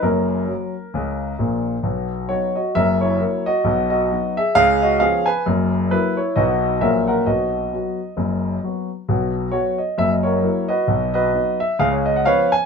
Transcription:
X:1
M:4/4
L:1/16
Q:"Swing" 1/4=133
K:B
V:1 name="Grand piano"
[CA]12- [CA]2 z2 | z4 [Fc]2 [Fd]2 [Ae]2 [Ec]4 [Fd]2- | [Fd]2 [Fd]4 [Ge]2 [G^e]2 [Fd]2 [Ge]2 [Bg]2 | z4 [EB]2 [Ec]2 [Fd]4 [Ae]2 [Af]2 |
[Fd]12 z4 | z4 [Fc]2 d2 e d [FAc]4 [FBd]2- | [FBd]2 [FBd]4 e2 ^e c d f [Bce]2 g2 |]
V:2 name="Grand piano" clef=bass
[F,,,F,,]4 [F,C]4 [C,,C,]4 [A,,,A,,]4 | [B,,,B,,]4 [F,B,D]4 [F,,,F,,]4 [F,A,E]4 | [B,,,B,,]4 [F,B,D]4 [C,,C,]4 [^E,B,C]4 | [F,,,F,,]4 [F,A,]4 [B,,,B,,F,B,D]4 [A,,,A,,F,CF]4 |
[B,,,B,,]4 [F,B,F]4 [F,,,F,,]4 [F,B,F]4 | [B,,,B,,]4 [F,B,]4 [F,,,F,,]4 [F,A,E]4 | [B,,,B,,]4 [F,B,D]4 [C,,C,]4 [^E,B,C]4 |]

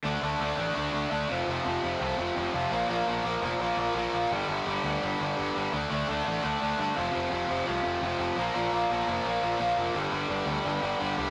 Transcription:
X:1
M:4/4
L:1/8
Q:1/4=170
K:Gm
V:1 name="Distorted electric guitar" clef=bass
[D,A,D] [D,A,D] [D,A,D] [D,A,D] [D,A,D] [D,A,D] [D,A,D] [F,,C,F,] | [F,,C,F,] [F,,C,F,] [F,,C,F,] [F,,C,F,] [F,,C,F,] [F,,C,F,] [F,,C,F,] [B,,F,B,] | [B,,F,B,] [B,,F,B,] [B,,F,B,] [B,,F,B,] [B,,F,B,] [B,,F,B,] [B,,F,B,] [B,,F,B,] | [G,,D,G,] [G,,D,G,] [G,,D,G,] [G,,D,G,] [G,,D,G,] [G,,D,G,] [G,,D,G,] [G,,D,G,] |
[D,A,D] [D,A,D] [D,A,D] [D,A,D] [D,A,D] [D,A,D] [D,A,D] [F,,C,F,] | [F,,C,F,] [F,,C,F,] [F,,C,F,] [F,,C,F,] [F,,C,F,] [F,,C,F,] [F,,C,F,] [B,,F,B,] | [B,,F,B,] [B,,F,B,] [B,,F,B,] [B,,F,B,] [B,,F,B,] [B,,F,B,] [B,,F,B,] [B,,F,B,] | [G,,D,G,] [G,,D,G,] [G,,D,G,] [G,,D,G,] [G,,D,G,] [G,,D,G,] [G,,D,G,] [G,,D,G,] |]
V:2 name="Overdriven electric guitar" clef=bass
[D,A,D] [D,A,D] [D,A,D] [D,A,D] [D,A,D] [D,A,D] [D,A,D] [F,,C,F,] | [F,,C,F,] [F,,C,F,] [F,,C,F,] [F,,C,F,] [F,,C,F,] [F,,C,F,] [F,,C,F,] [B,,F,B,] | [B,,F,B,] [B,,F,B,] [B,,F,B,] [B,,F,B,] [B,,F,B,] [B,,F,B,] [B,,F,B,] [B,,F,B,] | [G,,D,G,] [G,,D,G,] [G,,D,G,] [G,,D,G,] [G,,D,G,] [G,,D,G,] [G,,D,G,] [G,,D,G,] |
[D,A,D] [D,A,D] [D,A,D] [D,A,D] [D,A,D] [D,A,D] [D,A,D] [F,,C,F,] | [F,,C,F,] [F,,C,F,] [F,,C,F,] [F,,C,F,] [F,,C,F,] [F,,C,F,] [F,,C,F,] [B,,F,B,] | [B,,F,B,] [B,,F,B,] [B,,F,B,] [B,,F,B,] [B,,F,B,] [B,,F,B,] [B,,F,B,] [B,,F,B,] | [G,,D,G,] [G,,D,G,] [G,,D,G,] [G,,D,G,] [G,,D,G,] [G,,D,G,] [G,,D,G,] [G,,D,G,] |]
V:3 name="Picked electric bass" clef=bass
D,, D,, D,, A,,, D,, D,, D,, F,,, | F,,, F,,, F,,, C,, F,,, F,,, F,,, B,,, | B,,, B,,, B,,, F,,, B,,, B,,, B,,, B,,, | G,,, G,,, G,,, D,, G,,, G,,, G,,, G,,, |
D,, D,, D,, A,,, D,, D,, G,, F,,, | F,,, F,,, F,,, C,, F,,, F,,, F,,, B,,, | B,,, B,,, B,,, F,,, B,,, B,,, B,,, F,,, | G,,, G,,, G,,, D,, G,,, G,,, G,,, C,, |]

